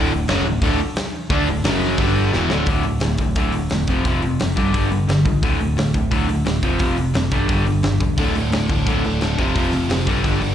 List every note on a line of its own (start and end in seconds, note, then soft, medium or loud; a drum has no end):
0.00 0.11 D2 loud
0.00 0.11 A2 loud
0.00 0.11 D3 loud
0.11 0.27 D1 medium
0.11 0.25 D2 medium
0.11 0.26 A2 medium
0.27 0.44 F#1 medium
0.27 0.45 F#2 medium
0.27 0.45 C#3 loud
0.27 0.45 F#3 loud
0.27 snare loud
0.27 open hi-hat medium
0.45 0.61 D1 medium
0.45 0.59 D2 medium
0.45 0.59 A2 medium
0.61 0.78 D1 medium
0.61 0.79 D2 loud
0.61 0.79 A2 loud
0.61 0.79 D3 loud
0.61 kick loud
0.61 open hi-hat medium
0.96 snare loud
0.96 open hi-hat medium
1.30 1.46 D2 medium
1.30 1.47 D3 loud
1.30 1.47 A3 loud
1.30 1.47 D4 loud
1.30 kick loud
1.30 open hi-hat medium
1.46 1.63 D1 medium
1.46 1.62 D2 medium
1.46 1.62 A2 medium
1.63 1.96 F#1 loud
1.63 1.98 F#2 medium
1.63 1.99 C#3 loud
1.63 1.99 F#3 loud
1.63 snare loud
1.63 open hi-hat medium
1.98 2.31 G1 loud
1.98 2.33 G2 loud
1.98 2.33 D3 loud
1.98 2.33 G3 loud
1.98 kick medium
1.98 open hi-hat medium
2.33 2.49 E1 loud
2.33 2.50 E2 medium
2.33 2.50 B2 medium
2.33 2.51 E3 loud
2.33 snare medium
2.50 2.66 D1 loud
2.50 2.67 D2 loud
2.50 2.68 A2 medium
2.50 2.68 D3 loud
2.50 snare loud
2.66 2.84 D1 medium
2.66 2.84 D2 medium
2.66 2.84 A2 loud
2.66 2.85 D3 loud
2.66 kick loud
2.66 open hi-hat medium
2.83 3.01 D1 medium
2.83 3.01 D2 medium
2.83 3.01 A2 medium
2.83 open hi-hat soft
3.00 3.18 D1 medium
3.00 3.18 D2 medium
3.00 3.18 A2 medium
3.00 snare loud
3.00 open hi-hat medium
3.18 3.35 D1 medium
3.18 3.35 D2 medium
3.18 3.35 A2 medium
3.18 kick medium
3.18 open hi-hat medium
3.35 3.53 D1 medium
3.35 3.52 D2 medium
3.35 3.53 A2 medium
3.35 3.53 D3 medium
3.35 kick loud
3.35 open hi-hat medium
3.52 3.70 D1 medium
3.52 3.69 D2 medium
3.52 3.70 A2 medium
3.52 open hi-hat medium
3.70 3.87 E1 medium
3.70 3.87 D2 medium
3.70 3.87 A2 medium
3.70 snare medium
3.70 open hi-hat medium
3.87 4.05 F1 medium
3.87 4.05 F2 loud
3.87 4.05 C3 loud
3.87 4.06 F3 loud
3.87 kick medium
3.87 open hi-hat medium
4.05 4.22 F1 medium
4.05 4.22 F2 medium
4.05 4.22 C3 loud
4.05 4.23 F3 loud
4.05 kick loud
4.05 open hi-hat medium
4.22 4.39 F1 medium
4.22 4.38 F2 medium
4.22 4.39 C3 medium
4.22 open hi-hat soft
4.40 4.57 F#1 medium
4.40 4.55 F2 medium
4.40 4.56 C3 medium
4.40 snare medium
4.40 open hi-hat medium
4.56 4.73 G1 medium
4.56 4.72 G2 medium
4.56 4.72 D3 medium
4.56 4.73 G3 loud
4.56 kick medium
4.56 open hi-hat medium
4.73 4.91 G1 medium
4.73 4.90 G2 medium
4.73 4.90 D3 medium
4.73 4.90 G3 loud
4.73 kick loud
4.73 open hi-hat medium
4.91 5.07 G1 medium
4.91 5.07 G2 medium
4.91 5.07 D3 medium
4.91 open hi-hat medium
5.08 5.25 G1 medium
5.08 5.24 G2 medium
5.08 5.24 D3 medium
5.08 snare loud
5.08 open hi-hat medium
5.25 5.42 C#2 medium
5.25 5.41 G2 medium
5.25 5.41 D3 medium
5.25 kick medium
5.25 open hi-hat medium
5.43 5.60 D1 medium
5.43 5.59 D2 loud
5.43 5.59 A2 loud
5.43 5.59 D3 loud
5.43 kick loud
5.43 open hi-hat medium
5.60 5.77 D1 medium
5.60 5.76 D2 medium
5.60 5.76 A2 medium
5.60 open hi-hat soft
5.77 5.94 D1 medium
5.77 5.93 D2 medium
5.77 5.93 A2 medium
5.77 snare loud
5.77 open hi-hat medium
5.94 6.11 D1 medium
5.94 6.10 D2 medium
5.94 6.10 A2 medium
5.94 kick medium
5.94 open hi-hat medium
6.11 6.28 D1 medium
6.11 6.27 D2 medium
6.11 6.27 A2 medium
6.11 6.28 D3 loud
6.11 kick medium
6.11 open hi-hat medium
6.28 6.45 D1 medium
6.28 6.44 D2 medium
6.28 6.44 A2 medium
6.28 open hi-hat medium
6.45 6.62 D1 medium
6.45 6.61 D2 medium
6.45 6.62 A2 medium
6.45 snare medium
6.45 open hi-hat medium
6.62 6.79 F1 medium
6.62 6.78 F2 medium
6.62 6.79 C3 loud
6.62 6.79 F3 loud
6.62 kick medium
6.62 open hi-hat medium
6.79 6.97 F1 medium
6.79 6.96 F2 loud
6.79 6.97 C3 loud
6.79 6.97 F3 loud
6.79 kick loud
6.79 open hi-hat medium
6.97 7.14 F1 medium
6.97 7.13 F2 medium
6.97 7.14 C3 medium
6.97 open hi-hat medium
7.14 7.31 F1 medium
7.14 7.30 F2 medium
7.14 7.30 C3 medium
7.14 snare loud
7.14 open hi-hat medium
7.31 7.49 G1 medium
7.31 7.47 G2 medium
7.31 7.48 D3 medium
7.31 7.48 G3 loud
7.31 kick medium
7.31 open hi-hat medium
7.48 7.66 G1 medium
7.48 7.65 G2 medium
7.48 7.65 D3 medium
7.48 7.66 G3 loud
7.48 kick loud
7.48 open hi-hat medium
7.66 7.84 G1 medium
7.66 7.82 G2 medium
7.66 7.82 D3 medium
7.66 open hi-hat medium
7.83 8.00 G1 medium
7.83 7.99 G2 medium
7.83 7.99 D3 medium
7.83 snare loud
7.83 open hi-hat medium
8.00 8.17 E1 medium
8.00 8.17 G2 medium
8.00 8.17 D3 medium
8.00 kick medium
8.00 open hi-hat medium
8.18 8.35 D1 medium
8.18 8.35 D2 medium
8.18 8.35 A2 loud
8.18 8.35 D3 loud
8.18 kick loud
8.18 open hi-hat medium
8.35 8.52 D1 medium
8.35 8.51 D2 medium
8.35 8.51 A2 medium
8.35 8.52 D3 medium
8.35 open hi-hat soft
8.52 8.69 D1 medium
8.52 8.68 D2 medium
8.52 8.68 A2 medium
8.52 8.70 D3 medium
8.52 snare loud
8.52 open hi-hat medium
8.69 8.86 D1 medium
8.69 8.84 D2 medium
8.69 8.85 A2 medium
8.69 8.87 D3 medium
8.69 kick medium
8.69 open hi-hat medium
8.86 9.03 D1 medium
8.86 9.03 D2 medium
8.86 9.03 A2 medium
8.86 9.03 D3 medium
8.86 kick loud
8.86 open hi-hat medium
9.04 9.22 D1 medium
9.04 9.20 D2 medium
9.04 9.20 A2 medium
9.04 9.22 D3 medium
9.04 open hi-hat soft
9.21 9.38 D1 medium
9.21 9.37 D2 medium
9.21 9.37 A2 medium
9.21 9.38 D3 medium
9.21 snare medium
9.21 open hi-hat medium
9.38 9.55 F1 medium
9.38 9.53 F2 medium
9.38 9.54 C3 loud
9.38 9.54 F3 loud
9.38 kick medium
9.38 open hi-hat medium
9.54 9.72 F1 medium
9.54 9.71 F2 medium
9.54 9.71 C3 medium
9.54 9.71 F3 loud
9.54 kick loud
9.54 open hi-hat medium
9.72 9.89 F1 medium
9.72 9.88 F2 medium
9.72 9.88 C3 medium
9.72 9.90 F3 medium
9.72 open hi-hat medium
9.89 10.06 F1 medium
9.89 10.05 F2 medium
9.89 10.05 C3 medium
9.89 10.07 F3 medium
9.89 snare loud
9.89 open hi-hat medium
10.06 10.24 G1 medium
10.06 10.22 G2 medium
10.06 10.22 D3 medium
10.06 10.23 G3 loud
10.06 kick medium
10.06 open hi-hat medium
10.23 10.40 G1 medium
10.23 10.39 G2 medium
10.23 10.39 D3 medium
10.23 10.40 G3 medium
10.23 kick medium
10.23 open hi-hat medium
10.40 10.55 G1 medium
10.40 10.55 G2 medium
10.40 10.55 D3 medium
10.40 10.55 G3 medium
10.40 open hi-hat soft